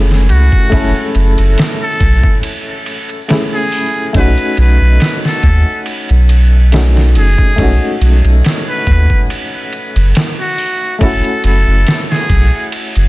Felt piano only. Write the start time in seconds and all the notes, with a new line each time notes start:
Already playing: A3 C#4 E4 G#4
0.69 A3 C#4 E4
0.75 A4
3.28 A3 C#4 E4 G#4
4.13 A3 C#4 D#4
4.19 F#4
6.72 A3 C#4 D#4 F#4
7.56 A3 C#4 D#4
7.62 F#4
10.98 A3 C#4 E4
11.04 F#4